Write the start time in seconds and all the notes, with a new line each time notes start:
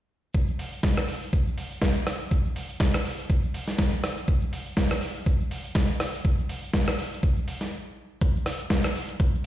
0.34 kick, cabasa
0.47 cabasa
0.59 open hi-hat
0.73 cabasa
0.83 kick, snare, cabasa
0.97 cross-stick, cabasa
1.08 open hi-hat
1.23 cabasa
1.33 kick, cabasa
1.47 cabasa
1.58 open hi-hat
1.71 cabasa
1.82 kick, snare, cabasa
1.96 cabasa
2.07 cross-stick, open hi-hat
2.21 cabasa
2.31 kick, cabasa
2.45 cabasa
2.56 open hi-hat
2.69 cabasa
2.80 kick, snare, cabasa
2.94 cross-stick, cabasa
3.05 open hi-hat
3.19 cabasa
3.30 kick, cabasa
3.44 cabasa
3.54 open hi-hat
3.68 snare, cabasa
3.79 kick, snare, cabasa
3.91 cabasa
4.04 cross-stick, open hi-hat
4.17 cabasa
4.28 kick, cabasa
4.41 cabasa
4.53 open hi-hat
4.66 cabasa
4.77 kick, snare, cabasa
4.91 cross-stick, cabasa
5.02 open hi-hat
5.16 cabasa
5.26 kick, cabasa
5.41 cabasa
5.51 open hi-hat
5.64 cabasa
5.75 kick, snare, cabasa
5.89 cabasa
6.00 cross-stick, open hi-hat
6.14 cabasa
6.24 kick, cabasa
6.39 cabasa
6.49 open hi-hat
6.63 cabasa
6.74 kick, snare, cabasa
6.88 cross-stick, cabasa
6.99 open hi-hat
7.13 cabasa
7.23 kick, cabasa
7.37 cabasa
7.48 open hi-hat
7.61 snare, cabasa
8.21 kick, closed hi-hat, cabasa
8.36 cabasa
8.46 cross-stick, open hi-hat
8.60 closed hi-hat, cabasa
8.70 kick, snare, closed hi-hat, cabasa
8.84 cross-stick, cabasa
8.95 open hi-hat
9.09 closed hi-hat, cabasa
9.20 kick, closed hi-hat, cabasa
9.35 cabasa